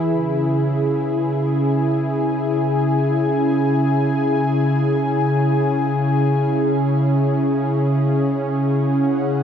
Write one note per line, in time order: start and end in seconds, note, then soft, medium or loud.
0.00 9.43 E4 medium
0.00 9.43 G#4 medium
0.00 2.74 B4 medium
0.00 1.38 B5 medium
0.09 9.43 C#3 medium
0.61 9.43 C#4 medium
0.98 9.11 G#5 medium
8.77 9.43 F#5 medium